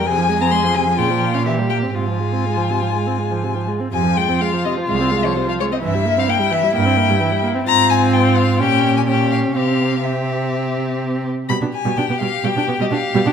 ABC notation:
X:1
M:4/4
L:1/16
Q:1/4=127
K:Fm
V:1 name="Violin"
a3 b c'2 a2 g3 f =e2 g2 | a12- a2 z2 | a2 g2 f2 e2 f3 d c f d e | =e3 f g2 e2 g6 z2 |
b2 a2 g2 f2 g3 a g2 f2 | f4 =e8 z4 | [K:Gphr] =b2 a2 g2 f2 g3 e f3 g |]
V:2 name="Violin"
A8 F4 G4 | F12- F2 z2 | F16 | =E16 |
F8 G4 G4 | G4 G8- G2 z2 | [K:Gphr] G16 |]
V:3 name="Viola" clef=bass
C, F, A, C A, F, C, F, D, F, B, D =E, G, B, C | C, F, A, C A, F, C, F, A, C A, F, C, F, A, C | C, F, A, C A, F, C, F, A, C A, F, C, F, A, C | =E, G, B, C B, G, E, G, B, C B, G, E, G, B, C |
C8 D4 D4 | C4 C8- C2 z2 | [K:Gphr] G, D z G, D =B, G, z G, D B, G, D z G, D |]
V:4 name="Cello" clef=bass
F,,8 B,,8 | A,,12- A,,2 z2 | F,,3 z4 z C,,3 z4 z | G,,3 z4 z G,,3 z4 z |
A,,8 B,,8 | C,12- C,2 z2 | [K:Gphr] =B,, B,, z B,, B,, B,, B,, z B,, B,, B,, B,, B,, z B,, B,, |]